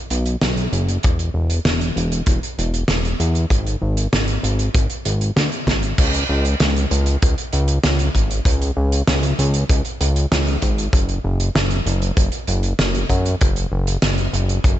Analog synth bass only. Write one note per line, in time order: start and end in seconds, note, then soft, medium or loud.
0.11 0.36 B1 medium
0.41 0.67 B1 medium
0.72 0.98 F#1 medium
1.04 1.30 E1 loud
1.34 1.60 E1 loud
1.65 1.91 E1 medium
1.96 2.22 E1 medium
2.27 2.40 E1 medium
2.58 2.84 E1 medium
2.89 3.15 E1 medium
3.20 3.46 E2 medium
3.50 3.76 G#1 loud
3.82 4.08 G#1 loud
4.13 4.39 G#1 medium
4.43 4.69 G#1 loud
4.75 4.87 G#1 medium
5.06 5.31 G#1 medium
5.36 5.49 D2 medium
5.67 5.93 G#1 medium
5.98 6.24 C#2 loud
6.29 6.55 C#2 loud
6.60 6.86 C#2 medium
6.91 7.17 C#2 loud
7.23 7.35 C#2 medium
7.53 7.79 C#2 medium
7.84 8.10 C#2 medium
8.15 8.41 G#1 medium
8.45 8.71 C#2 loud
8.77 9.03 C#2 loud
9.08 9.33 C#2 medium
9.39 9.64 C#2 loud
9.69 9.82 C#2 medium
10.01 10.26 C#2 medium
10.32 10.57 C#2 medium
10.62 10.88 G#1 medium
10.93 11.19 F#1 loud
11.25 11.50 F#1 loud
11.55 11.81 F#1 medium
11.86 12.12 F#1 loud
12.17 12.30 F#1 loud
12.48 12.74 F#1 medium
12.79 13.05 F#1 medium
13.10 13.35 F#2 loud
13.42 13.67 F#1 loud
13.72 13.97 F#1 loud
14.02 14.28 F#1 medium
14.33 14.59 F#1 loud
14.64 14.77 F#1 loud